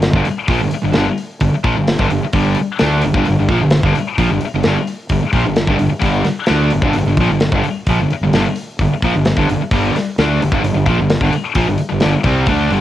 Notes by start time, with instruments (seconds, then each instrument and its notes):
Already playing: fingered electric bass G1, distorted electric guitar G2 D3
0.02 snare, open hi-hat
0.13 fingered electric bass G1, distorted electric guitar G2 D3, kick
0.25 muted fingered electric bass stroke, muted distorted electric guitar stroke, muted overdriven electric guitar stroke, open hi-hat
0.48 fingered electric bass A#1, distorted electric guitar A#2 F3, kick, open hi-hat
0.61 fingered electric bass G1, distorted electric guitar G2 D3
0.71 muted overdriven electric guitar stroke, muted fingered electric bass stroke, muted distorted electric guitar stroke, open hi-hat
0.84 fingered electric bass G1, distorted electric guitar G2 D3
0.92 fingered electric bass G1, overdriven electric guitar G2 D3, snare, open hi-hat
0.97 distorted electric guitar G2 D3
1.18 open hi-hat
1.40 fingered electric bass G1, distorted electric guitar G2 D3, kick, open hi-hat
1.53 muted overdriven electric guitar stroke, muted fingered electric bass stroke, muted distorted electric guitar stroke
1.64 fingered electric bass A#1, distorted electric guitar A#2 F3, kick, open hi-hat
1.76 fingered electric bass G1, distorted electric guitar G2 D3
1.87 snare, open hi-hat
1.99 fingered electric bass G1, distorted electric guitar G2 D3, kick
2.10 fingered electric bass G1, distorted electric guitar G2 D3, open hi-hat
2.22 muted overdriven electric guitar stroke, muted distorted electric guitar stroke, muted fingered electric bass stroke
2.33 fingered electric bass G1, distorted electric guitar G2 D3 G3, kick, open hi-hat
2.54 muted distorted electric guitar stroke, muted overdriven electric guitar stroke, open hi-hat
2.60 muted fingered electric bass stroke
2.79 fingered electric bass D2, distorted electric guitar D3 A3 D4, snare, open hi-hat
3.01 fingered electric bass G1, distorted electric guitar G2 D3, open hi-hat
3.14 fingered electric bass G1, distorted electric guitar G2 D3, kick
3.25 fingered electric bass G1, distorted electric guitar G2 D3, open hi-hat
3.40 fingered electric bass G1, distorted electric guitar G2 D3
3.49 fingered electric bass A#1, distorted electric guitar A#2 F3, kick, open hi-hat
3.63 fingered electric bass G1, distorted electric guitar G2 D3
3.71 snare, open hi-hat
3.83 fingered electric bass G1, distorted electric guitar G2 D3, kick
3.95 muted overdriven electric guitar stroke, muted fingered electric bass stroke, muted distorted electric guitar stroke, open hi-hat
4.18 fingered electric bass A#1, distorted electric guitar A#2 F3, kick, open hi-hat
4.31 fingered electric bass G1, distorted electric guitar G2 D3
4.41 muted overdriven electric guitar stroke, muted fingered electric bass stroke, open hi-hat
4.45 muted distorted electric guitar stroke
4.54 fingered electric bass G1, distorted electric guitar G2 D3
4.63 fingered electric bass G1, distorted electric guitar G2, snare, open hi-hat
4.68 distorted electric guitar D3
4.87 open hi-hat
5.09 fingered electric bass G1, distorted electric guitar G2 D3, kick, open hi-hat
5.23 muted distorted electric guitar stroke, muted fingered electric bass stroke, muted overdriven electric guitar stroke
5.33 fingered electric bass A#1, distorted electric guitar A#2 F3, kick, open hi-hat
5.45 fingered electric bass G1, distorted electric guitar G2 D3
5.56 snare, open hi-hat
5.67 fingered electric bass G1, distorted electric guitar G2 D3, kick
5.78 fingered electric bass G1, distorted electric guitar G2 D3, open hi-hat
5.89 muted distorted electric guitar stroke, muted fingered electric bass stroke, muted overdriven electric guitar stroke
6.00 fingered electric bass G1, distorted electric guitar G2 D3 G3, kick, open hi-hat
6.25 muted distorted electric guitar stroke, muted overdriven electric guitar stroke, muted fingered electric bass stroke, snare, open hi-hat
6.46 fingered electric bass D2, distorted electric guitar D3 A3 D4, snare, open hi-hat
6.71 distorted electric guitar G2 D3, open hi-hat
6.75 fingered electric bass G1
6.82 fingered electric bass G1, distorted electric guitar G2 D3, kick
6.93 fingered electric bass G1, distorted electric guitar G2, open hi-hat
6.98 distorted electric guitar D3
7.06 fingered electric bass G1, distorted electric guitar G2 D3
7.17 fingered electric bass A#1, distorted electric guitar A#2 F3, kick, open hi-hat
7.29 fingered electric bass G1, distorted electric guitar G2 D3
7.40 snare, open hi-hat
7.52 fingered electric bass G1, distorted electric guitar G2 D3, kick
7.64 muted overdriven electric guitar stroke, muted fingered electric bass stroke, muted distorted electric guitar stroke, open hi-hat
7.87 fingered electric bass A#1, distorted electric guitar A#2 F3, kick, open hi-hat
7.99 fingered electric bass G1, distorted electric guitar G2 D3
8.10 muted fingered electric bass stroke, muted overdriven electric guitar stroke, muted distorted electric guitar stroke, open hi-hat
8.21 fingered electric bass G1, distorted electric guitar G2 D3
8.33 fingered electric bass G1, distorted electric guitar G2 D3, snare, open hi-hat
8.55 open hi-hat
8.79 fingered electric bass G1, distorted electric guitar G2 D3, kick, open hi-hat
8.92 muted fingered electric bass stroke, muted overdriven electric guitar stroke, muted distorted electric guitar stroke
9.02 fingered electric bass A#1, distorted electric guitar A#2 F3, kick, open hi-hat
9.14 fingered electric bass G1, distorted electric guitar G2 D3
9.25 snare, open hi-hat
9.37 fingered electric bass G1, distorted electric guitar G2 D3, kick
9.49 fingered electric bass G1, distorted electric guitar G2 D3, open hi-hat
9.60 muted fingered electric bass stroke, muted distorted electric guitar stroke, muted overdriven electric guitar stroke
9.71 fingered electric bass G1, distorted electric guitar G2 D3 G3, kick, open hi-hat
9.95 muted fingered electric bass stroke, muted overdriven electric guitar stroke, muted distorted electric guitar stroke, snare, open hi-hat
10.18 fingered electric bass D2, distorted electric guitar D3 A3 D4, snare, open hi-hat
10.41 fingered electric bass G1, distorted electric guitar G2 D3, open hi-hat
10.52 fingered electric bass G1, distorted electric guitar G2 D3, kick
10.63 fingered electric bass G1, distorted electric guitar G2 D3, open hi-hat
10.74 fingered electric bass G1, distorted electric guitar G2 D3
10.86 fingered electric bass A#1, distorted electric guitar A#2 F3, kick, open hi-hat
10.98 fingered electric bass G1, distorted electric guitar G2 D3
11.10 snare, open hi-hat
11.20 fingered electric bass G1, distorted electric guitar G2 D3, kick
11.33 muted distorted electric guitar stroke, muted overdriven electric guitar stroke, muted fingered electric bass stroke, open hi-hat
11.55 fingered electric bass A#1, distorted electric guitar A#2 F3, kick, open hi-hat
11.68 fingered electric bass G1, distorted electric guitar G2 D3
11.78 muted distorted electric guitar stroke, muted fingered electric bass stroke, muted overdriven electric guitar stroke, open hi-hat
11.89 fingered electric bass G1, distorted electric guitar G2 D3
12.00 fingered electric bass G1, distorted electric guitar G2 D3, snare, open hi-hat
12.24 fingered electric bass C2, distorted electric guitar C3 G3 C4, kick, open hi-hat
12.46 fingered electric bass D2, distorted electric guitar D3 A3 D4, kick, open hi-hat
12.70 fingered electric bass G1, distorted electric guitar G2 D3 G3, open hi-hat